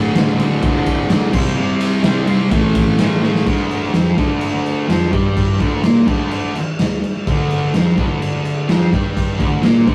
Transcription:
0.00 0.14 D2 medium
0.00 0.16 A2 loud
0.00 0.17 D3 loud
0.15 0.62 D2 medium
0.15 0.40 A2 medium
0.15 0.37 D3 medium
0.15 snare loud
0.15 ride loud
0.38 0.64 A2 medium
0.38 0.65 D3 medium
0.38 ride medium
0.62 1.08 D2 medium
0.62 1.10 A2 medium
0.62 1.11 D3 medium
0.62 kick loud
0.62 ride medium
0.74 snare soft
0.86 kick medium
0.86 ride medium
1.10 1.32 D2 loud
1.10 1.33 A2 medium
1.10 1.32 D3 loud
1.10 snare loud
1.10 ride loud
1.33 1.55 C3 medium
1.33 1.57 G3 medium
1.33 1.59 C4 loud
1.33 kick loud
1.33 crash loud
1.56 2.02 C3 loud
1.56 2.04 G3 loud
1.56 2.05 C4 loud
1.81 ride medium
2.03 2.49 C3 medium
2.03 2.29 G3 medium
2.03 2.26 C4 medium
2.03 snare loud
2.03 ride loud
2.27 2.51 G3 medium
2.27 2.50 C4 medium
2.27 ride medium
2.50 2.96 A2 medium
2.50 2.98 E3 loud
2.50 2.99 A3 loud
2.50 kick loud
2.50 ride loud
2.75 kick loud
2.75 ride medium
2.98 3.44 A2 medium
2.98 3.24 E3 loud
2.98 3.21 A3 loud
2.98 snare loud
2.98 ride loud
3.22 3.46 E3 medium
3.22 3.44 A3 medium
3.22 snare medium
3.35 snare medium
3.46 3.93 D2 loud
3.46 3.93 D3 medium
3.46 kick loud
3.46 crash medium
3.71 crash medium
3.83 snare soft
3.94 4.17 F2 medium
3.94 4.17 F3 loud
3.94 snare loud
3.94 crash medium
4.17 4.88 D2 medium
4.17 4.88 D3 loud
4.17 kick loud
4.17 crash medium
4.41 crash medium
4.66 crash medium
4.88 5.12 F2 loud
4.88 5.13 F3 medium
4.88 snare loud
4.88 crash medium
5.12 5.59 G2 medium
5.12 5.60 G3 medium
5.12 kick loud
5.12 crash medium
5.37 kick loud
5.37 crash medium
5.60 5.83 D2 medium
5.60 5.84 D3 loud
5.60 kick loud
5.60 crash medium
5.83 6.06 A#2 loud
5.83 6.07 A#3 loud
5.83 snare loud
5.83 crash medium
6.07 6.54 D2 medium
6.07 6.55 D3 loud
6.07 kick loud
6.07 crash medium
6.31 crash medium
6.55 muted distorted electric guitar stroke medium
6.55 crash medium
6.79 6.98 D2 medium
6.79 snare loud
6.79 crash medium
7.04 crash medium
7.27 7.74 D2 medium
7.27 7.74 D3 medium
7.27 kick loud
7.27 crash medium
7.50 crash medium
7.74 7.97 F2 loud
7.74 7.98 F3 loud
7.74 snare loud
7.74 crash medium
7.97 8.68 D2 loud
7.97 8.69 D3 loud
7.97 kick loud
7.97 crash medium
8.22 crash medium
8.45 crash medium
8.69 8.92 F2 medium
8.69 8.92 F3 loud
8.69 snare loud
8.69 crash medium
8.92 9.39 G2 medium
8.92 9.39 G3 medium
8.92 kick loud
8.92 crash medium
9.17 kick loud
9.17 crash medium
9.39 9.62 D2 medium
9.39 9.63 D3 loud
9.39 kick loud
9.39 crash medium
9.63 9.86 A#2 loud
9.63 9.87 A#3 loud
9.63 snare loud
9.63 crash medium
9.86 9.95 D2 medium
9.86 9.95 D3 loud
9.86 kick loud
9.86 crash medium

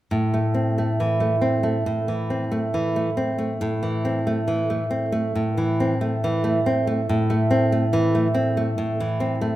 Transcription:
0.11 1.83 A2 soft
0.34 0.69 A3 soft
0.54 0.91 C4 soft
0.78 1.14 A3 soft
1.00 1.35 E3 soft
1.20 1.56 A3 soft
1.41 1.77 C4 soft
1.63 1.99 A3 soft
1.86 3.57 A2 soft
2.08 2.43 E3 soft
2.30 2.65 C4 soft
2.52 2.87 A3 soft
2.74 3.09 E3 soft
2.96 3.31 A3 soft
3.17 3.52 C4 soft
3.38 3.74 A3 soft
3.61 5.32 A2 soft
3.83 4.18 E3 soft
4.05 4.40 C4 soft
4.27 4.62 A3 soft
4.48 4.83 E3 soft
4.70 5.05 A3 soft
4.91 5.26 C4 soft
5.12 5.48 A3 soft
5.35 7.05 A2 soft
5.58 5.93 E3 soft
5.80 6.15 C4 soft
6.01 6.36 A3 soft
6.24 6.59 E3 soft
6.44 6.79 A3 soft
6.66 7.01 C4 soft
6.87 7.09 A3 soft
7.09 8.74 A2 medium
7.30 7.64 A3 soft
7.51 7.85 C4 soft
7.72 8.06 A3 soft
7.93 8.27 E3 soft
8.15 8.49 A3 soft
8.34 8.69 C4 soft
8.57 8.91 A3 soft
8.78 9.56 A2 soft
9.00 9.34 E3 soft
9.20 9.55 C4 soft
9.41 9.56 A3 soft

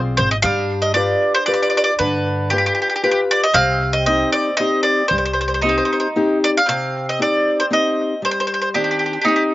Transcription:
0.00 0.16 B1 medium
0.00 0.33 C4 soft
0.00 0.33 F4 soft
0.00 0.33 G#4 soft
0.17 0.42 G#1 medium
0.17 0.31 C5 medium
0.31 0.36 D#5 medium
0.42 1.12 G2 medium
0.42 0.95 G3 medium
0.42 3.65 D4 medium
0.42 0.84 F5 loud
0.82 0.94 D#5 medium
0.94 1.38 F4 soft
0.94 1.38 G4 soft
0.94 1.38 B4 soft
0.94 1.32 D5 medium
1.34 1.46 C5 medium
1.46 1.90 F4 soft
1.46 1.90 G4 soft
1.46 1.90 B4 medium
1.46 1.52 D5 medium
1.54 1.61 D5 medium
1.63 1.69 D5 medium
1.70 1.76 D5 medium
1.77 1.83 D5 medium
1.84 1.93 D5 medium
1.99 2.67 G2 medium
1.99 2.51 D3 medium
1.99 2.48 B4 medium
2.50 2.94 F4 soft
2.50 2.57 G4 medium
2.50 2.94 G4 soft
2.50 2.94 B4 soft
2.58 2.65 G4 medium
2.66 2.73 G4 medium
2.75 2.81 G4 soft
2.82 2.88 G4 soft
2.90 2.95 G4 soft
2.96 3.02 G4 medium
3.03 3.45 F4 soft
3.03 3.10 G4 soft
3.03 3.45 G4 soft
3.03 3.46 B4 medium
3.11 3.20 G4 medium
3.31 3.43 D5 medium
3.44 3.55 D#5 medium
3.54 4.22 C2 medium
3.54 4.05 C3 medium
3.54 5.58 C4 medium
3.54 3.91 F5 loud
3.93 4.05 D#5 medium
4.06 4.49 C4 soft
4.06 4.49 D#4 soft
4.06 4.49 G4 soft
4.06 4.32 D#5 medium
4.32 4.57 D5 medium
4.57 5.01 C4 soft
4.57 5.01 D#4 soft
4.57 5.01 G4 medium
4.57 4.83 D#5 medium
4.83 5.08 D5 medium
5.08 5.79 C2 medium
5.08 5.17 C5 medium
5.13 5.63 G3 medium
5.18 5.24 C5 medium
5.25 5.32 C5 medium
5.33 5.40 C5 soft
5.41 5.47 C5 medium
5.48 5.53 C5 soft
5.54 5.60 C5 soft
5.61 6.05 C4 soft
5.61 6.38 D#4 medium
5.61 6.06 D#4 soft
5.61 6.06 G4 soft
5.61 5.68 C5 soft
5.69 5.76 C5 medium
5.78 5.84 C5 soft
5.85 5.91 C5 soft
5.93 5.99 C5 soft
6.00 6.07 C5 medium
6.16 6.58 C4 medium
6.16 6.58 D#4 soft
6.16 6.58 G4 medium
6.44 6.49 D5 medium
6.57 6.68 F5 medium
6.66 7.19 C3 medium
6.66 8.81 C4 medium
6.66 7.05 F5 medium
7.09 7.20 D#5 medium
7.19 7.61 C4 soft
7.19 7.62 D#4 soft
7.19 7.62 G4 soft
7.19 7.58 D5 medium
7.60 7.65 C5 medium
7.71 8.13 C4 soft
7.71 8.13 D#4 soft
7.71 8.13 G4 medium
7.71 8.21 D#5 medium
8.22 8.73 G3 medium
8.22 8.30 C5 medium
8.31 8.39 C5 medium
8.40 8.46 C5 medium
8.47 8.53 C5 medium
8.54 8.60 C5 medium
8.62 8.68 C5 medium
8.74 9.17 D#3 soft
8.74 9.16 C4 soft
8.74 9.24 D4 medium
8.74 8.82 G4 medium
8.74 9.17 G4 soft
8.84 8.90 G4 soft
8.91 8.98 G4 soft
8.99 9.05 G4 soft
9.06 9.12 G4 soft
9.13 9.20 G4 soft
9.22 9.54 C4 soft
9.22 9.54 D#4 medium
9.22 9.27 G4 soft
9.26 9.54 D#4 soft
9.26 9.54 G4 medium
9.26 9.35 G4 soft
9.36 9.43 G4 soft

